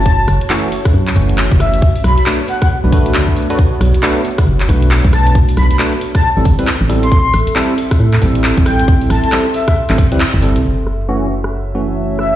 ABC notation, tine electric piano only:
X:1
M:4/4
L:1/16
Q:"Swing 16ths" 1/4=136
K:F#m
V:1 name="Tine electric piano"
z4 [E,A,CF] z4 z [E,A,CF]6 | z4 [A,DFB] z4 [A,DFB] [A,DFB]4- [A,DFB] [A,DFB] | z4 [A,DFB] z4 z [A,DFB]6- | [A,DFB]4 [A,DFB] z4 [=G,=CEA] z [G,CEB] z2 [G,CEA] z |
z4 [=G,=CEA] z4 z [G,CEA]6- | [=G,=CEA]4 [G,CEA] z4 [G,CEA] z [G,CEB] z2 [G,CEA] z | z4 [E,A,CF] z4 z [E,A,CF]6 |]